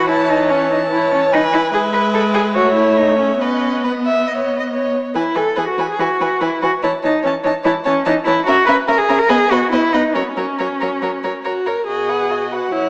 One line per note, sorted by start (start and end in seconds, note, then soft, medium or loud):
0.00 1.69 E3 medium
0.08 0.31 E4 medium
0.08 0.90 C#5 medium
0.08 0.49 A5 medium
0.30 0.51 D#4 medium
0.50 0.70 C#4 medium
0.50 1.33 A5 medium
0.71 0.79 D#4 medium
0.91 1.12 E4 medium
0.91 1.34 C#5 medium
1.13 1.21 C#4 medium
1.32 1.41 D#4 loud
1.32 1.72 B4 medium
1.32 1.73 G#5 medium
1.53 1.61 E4 medium
1.72 2.57 G#3 medium
1.72 1.82 G#4 medium
1.72 2.56 B4 medium
1.72 2.51 E5 medium
1.93 2.01 B4 loud
2.14 2.22 A4 medium
2.34 2.42 G#4 medium
2.55 3.40 A3 medium
2.55 2.75 F#4 medium
2.55 3.43 C#5 medium
2.55 3.43 E5 medium
2.76 2.99 E4 medium
2.97 3.18 D#4 medium
3.19 3.40 C#4 medium
3.40 4.91 B3 medium
3.40 3.86 C#4 medium
3.40 3.83 B4 medium
3.40 3.84 D#5 medium
3.84 4.93 B3 medium
3.84 3.92 B4 medium
3.84 4.92 D#5 soft
4.05 4.29 E5 medium
4.28 4.37 D#5 medium
4.38 4.59 C#5 soft
4.60 4.64 D#5 soft
4.70 5.14 C#5 medium
5.14 5.22 E3 medium
5.14 5.37 E4 medium
5.14 5.23 B4 soft
5.14 5.23 G#5 medium
5.35 5.44 E3 soft
5.35 5.59 A4 medium
5.35 5.43 B4 soft
5.35 5.44 G#5 soft
5.56 5.65 E3 medium
5.56 5.68 G#4 medium
5.56 5.64 B4 soft
5.56 5.67 G#5 soft
5.69 5.88 F#4 medium
5.78 5.86 E3 medium
5.78 5.86 B4 soft
5.78 5.88 G#5 soft
5.89 6.01 G#4 medium
5.99 6.07 E3 medium
5.99 6.43 F#4 medium
5.99 6.08 B4 soft
5.99 6.09 G#5 medium
6.20 6.28 E3 soft
6.20 6.29 B4 soft
6.20 6.29 G#5 soft
6.41 6.49 E3 medium
6.41 6.62 E4 medium
6.41 6.49 B4 medium
6.41 6.50 G#5 soft
6.62 6.70 E3 medium
6.62 6.71 F#4 medium
6.62 6.70 B4 soft
6.62 6.72 G#5 soft
6.82 6.92 E3 medium
6.82 6.91 E4 medium
6.82 6.90 C#5 medium
6.82 6.92 A5 medium
7.03 7.12 E3 medium
7.03 7.24 D#4 medium
7.03 7.11 C#5 soft
7.03 7.13 A5 soft
7.23 7.33 E3 medium
7.23 7.32 C#4 medium
7.23 7.31 C#5 medium
7.23 7.34 A5 medium
7.44 7.52 E3 soft
7.44 7.52 D#4 medium
7.44 7.52 C#5 medium
7.44 7.54 A5 medium
7.63 7.73 E3 medium
7.63 7.72 E4 medium
7.63 7.71 C#5 medium
7.63 7.74 A5 medium
7.84 7.94 E3 medium
7.84 8.05 C#4 medium
7.84 7.92 C#5 medium
7.84 7.93 A5 medium
8.05 8.14 E3 medium
8.05 8.14 D#4 loud
8.05 8.13 C#5 medium
8.05 8.13 A5 medium
8.25 8.35 E3 medium
8.25 8.46 E4 medium
8.25 8.33 C#5 medium
8.25 8.35 A5 medium
8.47 8.56 C#4 medium
8.47 8.66 F#4 loud
8.47 8.55 A#4 medium
8.47 8.56 E5 medium
8.66 8.76 C#4 medium
8.66 8.75 A#4 medium
8.66 8.74 B4 loud
8.66 8.76 E5 medium
8.87 8.95 C#4 medium
8.87 8.99 A#4 medium
8.87 8.96 A#4 medium
8.87 8.96 E5 medium
8.98 9.20 G#4 medium
9.09 9.17 C#4 medium
9.09 9.17 A#4 medium
9.09 9.17 E5 medium
9.19 9.30 A#4 medium
9.29 9.37 B3 medium
9.29 9.52 G#4 loud
9.29 9.37 B4 medium
9.29 9.38 D#5 medium
9.50 9.58 B3 medium
9.50 9.72 F#4 medium
9.50 9.59 B4 medium
9.50 9.59 D#5 medium
9.72 9.80 B3 medium
9.72 9.94 E4 loud
9.72 9.81 B4 medium
9.72 9.80 D#5 medium
9.93 10.01 B3 medium
9.93 10.16 D#4 medium
9.93 10.02 B4 medium
9.93 10.02 D#5 medium
10.14 10.22 F#3 medium
10.14 10.23 C#4 medium
10.14 10.23 A#4 soft
10.14 10.23 C#5 medium
10.22 10.30 B3 medium
10.29 11.44 C#4 medium
10.37 10.45 F#3 medium
10.37 10.45 A#4 soft
10.37 10.46 C#5 soft
10.58 10.67 F#3 medium
10.58 10.66 A#4 soft
10.58 10.68 C#5 soft
10.80 10.90 F#3 medium
10.80 10.88 A#4 medium
10.80 10.89 C#5 soft
11.02 11.10 F#3 medium
11.02 11.10 A#4 soft
11.02 11.10 C#5 soft
11.23 11.31 F#3 soft
11.23 11.32 A#4 soft
11.23 11.32 C#5 soft
11.44 11.68 F#4 medium
11.44 11.53 A#4 soft
11.44 11.52 C#5 soft
11.66 11.74 A#4 soft
11.66 11.87 A#4 medium
11.66 11.74 C#5 soft
11.88 12.69 B2 soft
11.88 12.11 F#4 soft
11.88 12.50 G#4 medium
11.88 12.11 D#5 soft
12.09 12.32 B4 soft
12.09 12.33 F#5 soft
12.31 12.53 F#4 soft
12.31 12.55 D#5 soft
12.52 12.74 F#4 medium
12.52 12.72 B4 soft
12.52 12.73 F#5 soft
12.72 12.89 F#2 soft
12.72 12.89 E4 medium
12.72 12.89 C#5 soft
12.72 12.89 F#5 soft